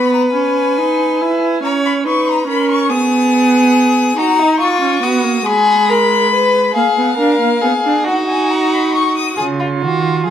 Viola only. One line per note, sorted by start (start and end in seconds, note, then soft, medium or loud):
0.00 0.33 B3 medium
0.34 0.80 C#4 medium
0.78 1.22 D#4 medium
1.21 1.63 E4 medium
1.63 2.07 C#4 medium
2.05 2.47 D#4 medium
2.48 2.91 C#4 medium
2.90 4.17 B3 medium
4.17 4.80 D#4 medium
4.82 5.02 C#4 medium
5.03 5.26 B3 medium
5.24 5.46 A#3 medium
5.46 6.73 G#3 medium
6.75 6.83 A#3 medium
6.97 7.18 B3 medium
7.19 7.40 D4 medium
7.41 7.62 A#3 medium
7.63 7.71 B3 medium
7.85 8.08 D4 medium
8.07 9.38 D#4 medium
9.39 10.30 F4 medium